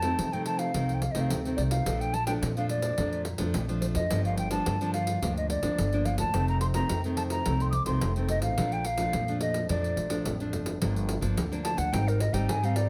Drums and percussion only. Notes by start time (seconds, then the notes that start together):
0.02 pandeiro
0.19 pandeiro
0.33 pandeiro
0.46 pandeiro
0.59 pandeiro
0.74 pandeiro
0.89 pandeiro
1.02 pandeiro
1.15 pandeiro
1.30 pandeiro
1.45 pandeiro
1.58 pandeiro
1.71 pandeiro
1.86 pandeiro
2.01 pandeiro
2.14 pandeiro
2.27 pandeiro
2.43 pandeiro
2.57 pandeiro
2.69 pandeiro
2.82 pandeiro
2.98 pandeiro
3.13 pandeiro
3.25 pandeiro
3.38 pandeiro
3.54 pandeiro
3.69 pandeiro
3.82 pandeiro
3.95 pandeiro
4.10 pandeiro
4.25 pandeiro
4.38 pandeiro
4.51 pandeiro
4.66 pandeiro
4.81 pandeiro
4.94 pandeiro
5.07 pandeiro
5.22 pandeiro
5.37 pandeiro
5.50 pandeiro
5.63 pandeiro
5.78 pandeiro
5.93 pandeiro
6.05 pandeiro
6.18 pandeiro
6.34 pandeiro
6.48 pandeiro
6.61 pandeiro
6.74 pandeiro
6.89 pandeiro
7.04 pandeiro
7.17 pandeiro
7.30 pandeiro
7.46 pandeiro
7.60 pandeiro
7.73 pandeiro
7.86 pandeiro
8.01 pandeiro
8.16 pandeiro
8.28 pandeiro
8.42 pandeiro
8.58 pandeiro
8.72 pandeiro
8.85 pandeiro
8.98 pandeiro
9.13 pandeiro
9.28 pandeiro
9.41 pandeiro
9.54 pandeiro
9.69 pandeiro
9.84 pandeiro
9.97 pandeiro
10.10 pandeiro
10.25 pandeiro
10.40 pandeiro
10.53 pandeiro
10.66 pandeiro
10.82 pandeiro
10.96 pandeiro
11.09 pandeiro
11.22 pandeiro
11.37 pandeiro
11.53 pandeiro
11.65 pandeiro
11.78 pandeiro
11.94 pandeiro
12.08 pandeiro
12.20 pandeiro
12.34 pandeiro
12.49 pandeiro
12.63 pandeiro
12.76 pandeiro